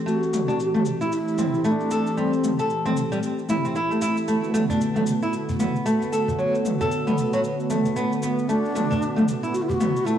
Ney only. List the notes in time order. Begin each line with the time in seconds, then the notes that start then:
0.06 F#4
1.13 E4
1.66 E4
1.71 D4
2.18 C4
8.23 B3 C4
8.48 D4
9.53 F#4
9.62 E4
9.69 G4
9.74 F#4
10.06 E4